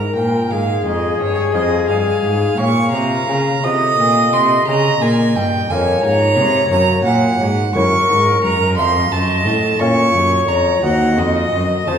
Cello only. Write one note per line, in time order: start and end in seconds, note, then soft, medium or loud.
0.00 0.16 G#2 medium
0.16 0.50 A#2 medium
0.51 0.85 G#2 medium
0.86 1.19 F2 medium
1.20 1.56 G2 medium
1.54 1.91 F2 medium
1.89 2.23 G2 medium
2.23 2.57 G#2 medium
2.58 2.91 A#2 medium
2.92 3.27 C3 medium
3.28 3.62 C#3 medium
3.63 3.97 C3 medium
3.98 4.32 A#2 medium
4.33 4.66 C3 medium
4.67 5.00 C#3 medium
5.01 5.37 A#2 medium
5.35 5.69 G2 medium
5.69 6.02 F2 medium
6.03 6.38 G#2 medium
6.36 6.69 C3 medium
6.70 7.02 F#2 medium
7.05 7.39 A#2 medium
7.40 7.74 G#2 medium
7.75 8.09 F#2 medium
8.10 8.43 G#2 medium
8.44 8.79 F#2 medium
8.78 9.11 F2 medium
9.12 9.47 F#2 medium
9.46 9.79 A2 medium
9.80 10.13 A#2 medium
10.14 10.48 F#2 medium
10.48 10.82 F2 medium
10.83 11.19 D#2 medium
11.18 11.52 F2 medium
11.52 11.86 F#2 medium
11.88 11.98 F2 medium